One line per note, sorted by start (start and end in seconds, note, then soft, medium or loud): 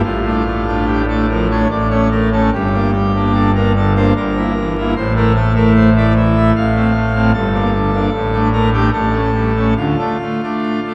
0.03 1.65 A1 medium
0.03 1.65 A2 medium
0.03 0.85 F4 medium
0.25 0.43 A3 soft
0.25 0.43 D4 soft
0.46 0.65 A3 medium
0.67 1.02 A3 soft
0.67 1.02 D4 soft
0.87 1.05 G4 medium
1.08 1.26 A3 soft
1.08 1.26 D4 soft
1.08 1.26 A4 medium
1.29 1.48 F3 soft
1.29 1.47 A#4 medium
1.50 1.67 A3 soft
1.50 1.68 D4 soft
1.50 1.68 C#5 medium
1.70 2.50 A1 medium
1.70 2.50 A2 medium
1.70 1.88 D5 medium
1.90 2.08 A3 soft
1.90 2.08 C#4 soft
1.90 2.08 C#5 medium
2.11 2.30 A3 soft
2.11 2.29 A#4 medium
2.32 2.50 A3 soft
2.32 2.50 C#4 soft
2.32 2.50 A4 medium
2.53 4.12 G1 medium
2.53 4.12 G2 medium
2.53 3.32 G4 medium
2.73 2.90 A#3 soft
2.73 2.91 D4 medium
2.94 3.12 G3 medium
3.15 3.49 A#3 soft
3.15 3.50 D4 soft
3.34 3.52 A4 medium
3.55 3.72 A#3 soft
3.55 3.72 D4 soft
3.55 3.72 A#4 medium
3.76 3.94 D3 medium
3.76 3.93 A4 medium
3.96 4.13 A#3 soft
3.96 4.13 D4 medium
3.96 4.13 C5 medium
4.16 4.94 G1 medium
4.16 4.94 G2 medium
4.16 4.94 A#4 medium
4.37 4.53 A#3 soft
4.37 4.54 E4 medium
4.57 4.74 E3 soft
4.77 4.94 A#3 soft
4.77 4.94 E4 medium
4.96 6.51 A1 medium
4.96 6.51 A2 medium
4.96 5.13 C5 loud
5.16 5.33 A3 medium
5.16 5.33 E4 soft
5.16 5.33 A#4 medium
5.35 5.53 A3 medium
5.35 5.52 A4 medium
5.55 5.89 A3 medium
5.55 5.89 E4 medium
5.55 5.73 A#4 medium
5.76 5.92 C5 medium
5.96 6.13 A3 soft
5.96 6.13 E4 medium
5.96 6.13 D5 medium
6.17 6.34 E3 medium
6.17 6.50 E5 medium
6.36 6.53 A3 medium
6.36 6.53 E4 medium
6.56 7.32 A1 medium
6.56 7.32 A2 medium
6.56 7.32 F5 loud
6.76 6.92 A3 medium
6.76 6.92 C4 medium
6.95 7.13 A3 medium
7.15 7.31 A3 medium
7.15 7.31 C4 medium
7.34 8.09 G1 medium
7.34 8.09 G2 medium
7.34 8.48 A4 loud
7.54 7.70 A#3 medium
7.54 7.70 D4 medium
7.74 7.91 D3 medium
7.93 8.10 A#3 medium
7.93 8.10 D4 medium
8.13 8.90 A1 medium
8.13 8.90 A2 medium
8.33 8.49 A3 medium
8.33 8.49 D4 medium
8.53 8.70 A3 medium
8.53 8.69 A#4 medium
8.73 8.89 A3 medium
8.73 8.90 D4 medium
8.73 8.90 G4 loud
8.93 9.74 A1 medium
8.93 9.74 A2 medium
8.93 9.74 A4 loud
9.12 9.30 A3 medium
9.12 9.30 C#4 medium
9.34 9.53 G3 medium
9.56 9.74 A3 medium
9.56 9.74 C#4 medium
9.77 9.95 D2 medium
9.77 9.95 D3 medium
9.77 10.94 F4 medium
9.99 10.17 A3 soft
9.99 10.17 D4 medium
10.21 10.40 A3 medium
10.43 10.80 A3 soft
10.43 10.80 D4 soft
10.86 10.94 A3 soft
10.86 10.94 D4 soft